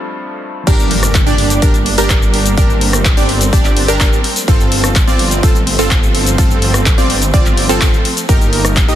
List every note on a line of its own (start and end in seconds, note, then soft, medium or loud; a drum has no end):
0.00 0.68 G2 medium
0.00 0.69 F3 medium
0.00 0.69 A3 medium
0.00 0.69 C4 medium
0.00 0.69 A4 loud
0.67 1.24 G1 medium
0.67 4.44 G3 medium
0.67 4.44 A#3 medium
0.67 1.24 D4 medium
0.67 2.56 D4 medium
0.67 1.24 G4 medium
0.67 1.24 A#4 loud
0.67 kick loud
0.67 closed hi-hat medium
0.67 crash loud
0.67 impact medium
0.67 cabasa medium
0.80 cabasa soft
0.91 open hi-hat loud
1.03 cross-stick medium
1.03 closed hi-hat medium
1.03 cabasa medium
1.15 kick loud
1.15 clap loud
1.15 closed hi-hat medium
1.15 cabasa medium
1.27 1.60 G1 loud
1.27 1.59 D4 medium
1.27 1.59 G4 medium
1.27 1.59 D5 medium
1.27 closed hi-hat soft
1.27 cabasa soft
1.38 open hi-hat loud
1.50 closed hi-hat medium
1.50 cabasa medium
1.62 1.96 G1 medium
1.62 1.75 D4 medium
1.62 1.75 G4 medium
1.62 1.75 A#4 medium
1.62 kick loud
1.62 closed hi-hat medium
1.62 cabasa medium
1.74 closed hi-hat soft
1.74 cabasa soft
1.86 open hi-hat loud
1.98 2.55 G1 loud
1.98 2.55 D4 loud
1.98 2.55 G4 medium
1.98 2.55 A#4 loud
1.98 closed hi-hat medium
1.98 cabasa medium
2.10 kick loud
2.10 cross-stick medium
2.10 clap loud
2.10 closed hi-hat medium
2.10 cabasa medium
2.22 cabasa soft
2.34 open hi-hat loud
2.46 closed hi-hat medium
2.46 cabasa medium
2.58 3.15 G1 medium
2.58 4.46 C4 medium
2.58 3.14 D4 medium
2.58 3.14 G4 medium
2.58 3.14 A#4 medium
2.58 kick loud
2.58 closed hi-hat medium
2.58 cabasa medium
2.70 cabasa soft
2.81 open hi-hat loud
2.93 cross-stick medium
2.93 closed hi-hat medium
2.93 cabasa medium
3.05 kick loud
3.05 clap loud
3.05 closed hi-hat medium
3.05 cabasa medium
3.17 3.50 G1 loud
3.17 3.29 D4 medium
3.17 3.29 G4 medium
3.17 3.29 D5 loud
3.17 open hi-hat medium
3.17 cabasa soft
3.29 open hi-hat loud
3.41 closed hi-hat medium
3.41 cabasa medium
3.53 3.86 G1 loud
3.53 3.86 D4 loud
3.53 3.86 G4 medium
3.53 3.86 D5 loud
3.53 kick loud
3.53 closed hi-hat medium
3.53 cabasa medium
3.65 clap soft
3.65 closed hi-hat soft
3.65 cabasa soft
3.77 open hi-hat loud
3.88 3.98 G1 loud
3.88 3.99 D4 medium
3.88 3.99 G4 medium
3.88 3.99 A#4 loud
3.88 closed hi-hat medium
3.88 cabasa medium
4.00 4.18 G1 loud
4.00 4.20 D4 medium
4.00 4.20 G4 medium
4.00 4.20 A#4 loud
4.00 kick loud
4.00 cross-stick medium
4.00 clap loud
4.00 closed hi-hat medium
4.00 cabasa medium
4.13 cabasa soft
4.24 open hi-hat loud
4.36 closed hi-hat medium
4.36 cabasa medium
4.48 5.05 G1 loud
4.48 8.25 F3 medium
4.48 8.25 A3 medium
4.48 5.05 C4 medium
4.48 8.25 C4 medium
4.48 5.05 F4 medium
4.48 5.05 A4 loud
4.48 kick loud
4.48 closed hi-hat medium
4.48 cabasa medium
4.60 cabasa soft
4.72 open hi-hat loud
4.84 cross-stick medium
4.84 closed hi-hat medium
4.84 cabasa medium
4.96 kick loud
4.96 clap loud
4.96 closed hi-hat medium
4.96 cabasa medium
5.07 5.41 G1 loud
5.07 5.40 C4 medium
5.07 5.40 F4 medium
5.07 5.40 D5 loud
5.07 closed hi-hat soft
5.07 cabasa soft
5.19 open hi-hat loud
5.31 closed hi-hat medium
5.31 cabasa medium
5.43 5.77 G1 medium
5.43 5.56 C4 medium
5.43 5.56 F4 medium
5.43 5.56 A4 loud
5.43 kick loud
5.43 closed hi-hat medium
5.43 cabasa medium
5.55 closed hi-hat soft
5.55 cabasa soft
5.67 open hi-hat loud
5.79 6.36 G1 medium
5.79 6.36 C4 medium
5.79 6.36 F4 medium
5.79 6.36 A4 loud
5.79 closed hi-hat soft
5.79 cabasa medium
5.91 kick loud
5.91 cross-stick medium
5.91 clap loud
5.91 closed hi-hat medium
5.91 cabasa medium
6.03 cabasa soft
6.15 open hi-hat loud
6.26 closed hi-hat medium
6.26 cabasa medium
6.38 6.96 G1 medium
6.38 6.95 C4 medium
6.38 6.95 F4 medium
6.38 6.95 A4 medium
6.38 kick loud
6.38 closed hi-hat medium
6.38 cabasa medium
6.51 cabasa soft
6.62 open hi-hat loud
6.74 cross-stick medium
6.74 closed hi-hat medium
6.74 cabasa medium
6.86 kick loud
6.86 clap loud
6.86 closed hi-hat medium
6.86 cabasa medium
6.98 7.31 G1 loud
6.98 7.10 C4 medium
6.98 7.10 F4 medium
6.98 7.10 D5 loud
6.98 open hi-hat medium
6.98 cabasa soft
7.10 open hi-hat loud
7.22 closed hi-hat medium
7.22 cabasa medium
7.34 7.67 G1 loud
7.34 7.66 C4 loud
7.34 7.67 F4 medium
7.34 7.67 D5 loud
7.34 kick loud
7.34 closed hi-hat medium
7.34 cabasa medium
7.46 clap soft
7.46 closed hi-hat soft
7.46 cabasa soft
7.57 open hi-hat loud
7.69 7.79 G1 medium
7.69 7.80 C4 medium
7.69 7.80 F4 medium
7.69 7.80 A4 loud
7.69 closed hi-hat soft
7.69 cabasa medium
7.81 7.99 G1 medium
7.81 8.01 C4 medium
7.81 8.01 F4 medium
7.81 kick loud
7.81 cross-stick medium
7.81 clap loud
7.81 closed hi-hat medium
7.81 cabasa medium
7.94 cabasa soft
8.05 open hi-hat loud
8.17 closed hi-hat soft
8.17 cabasa medium
8.29 8.86 G1 loud
8.29 8.95 D#3 medium
8.29 8.95 G3 medium
8.29 8.95 A#3 medium
8.29 8.86 D#4 loud
8.29 8.86 G4 medium
8.29 8.86 A#4 loud
8.29 kick loud
8.29 closed hi-hat medium
8.29 cabasa medium
8.41 cabasa soft
8.53 open hi-hat loud
8.65 cross-stick medium
8.65 closed hi-hat medium
8.65 cabasa medium
8.77 kick loud
8.77 clap loud
8.77 closed hi-hat medium
8.77 cabasa medium
8.88 8.95 G1 loud
8.88 8.95 D#4 medium
8.88 8.95 G4 medium
8.88 8.95 D#5 loud
8.88 closed hi-hat soft
8.88 cabasa soft